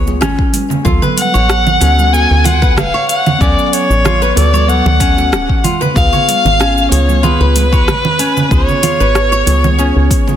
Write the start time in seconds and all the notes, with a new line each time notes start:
Already playing: C#2 C#5
0.06 B3 F4 G#4, muted conga, shaker
0.21 G#1 C#4, cross-stick, muted conga, low conga, shaker
0.39 kick
0.53 open hi-hat, high conga, shaker
0.70 low conga, shaker
0.83 D2 F#3 B3 F4, kick, low conga, shaker
0.88 A4
1.02 B4, low conga, shaker
1.17 F#5, open hi-hat, high conga, shaker
1.34 A1 C#5, shaker
1.50 cross-stick, shaker
1.67 low conga, shaker
1.80 D2 B3 C#4 F#4 A4, open hi-hat, muted conga, shaker
1.99 high conga, shaker
2.12 B3 F#4 A4 G#5, shaker
2.31 D2
2.44 F4 F#5, open hi-hat, muted conga, low conga, shaker
2.62 B3 F#4 A4 B4, kick, shaker
2.70 F#5
2.76 D1 F5, cross-stick, muted conga, high conga, low conga, shaker
2.94 C#5
3.09 F#5, open hi-hat, shaker
3.26 low conga, shaker
3.38 D2 F#3 B3 C#4 D5, kick, shaker
3.42 A4
3.59 shaker
3.66 D5
3.73 C#5, open hi-hat, shaker
3.90 A1, shaker
4.05 F4, cross-stick, low conga, shaker
4.22 B4, shaker
4.35 D2 B3 F#4 A4 D5, open hi-hat, muted conga, shaker
4.53 C#5, high conga, shaker
4.67 F#3 B3 A4 F#5, shaker
4.86 D2, low conga
5.00 C#4, kick, open hi-hat, shaker
5.16 B3 F#4 A4, muted conga, shaker
5.32 D1, cross-stick, muted conga, shaker
5.49 kick
5.64 F4, open hi-hat, high conga, low conga, shaker
5.81 B4, low conga, shaker
5.94 C#2 B3 F4 G#4 F5, kick, shaker
6.13 C#5, low conga, shaker
6.28 open hi-hat, high conga, shaker
6.45 G#1, low conga, shaker
6.59 C#4, cross-stick, shaker
6.78 shaker
6.90 C#2 B3 F4 G#4 C#5, open hi-hat, muted conga, shaker
7.09 high conga, shaker
7.22 B3 F4 G#4 B4, low conga, shaker
7.40 C#2 B4
7.56 open hi-hat, muted conga, shaker
7.72 B3 F4 G#4 C#5, kick, shaker
7.87 G#1, cross-stick, muted conga, high conga, low conga, shaker
8.05 low conga
8.19 C#4, open hi-hat, shaker
8.37 low conga, shaker
8.49 C#2 B3 F4 G#4 C#5, kick, shaker
8.68 low conga, shaker
8.83 F4, open hi-hat, low conga, shaker
9.00 G#1 B4, shaker
9.15 cross-stick, shaker
9.32 C#5, shaker
9.46 C#2 B3 F4 G#4, open hi-hat, muted conga, shaker
9.64 high conga, low conga, shaker
9.77 B3 C#4 F4 G#4, shaker
9.96 C#2
10.11 kick, open hi-hat, shaker
10.26 B3 F4 G#4, muted conga, low conga, shaker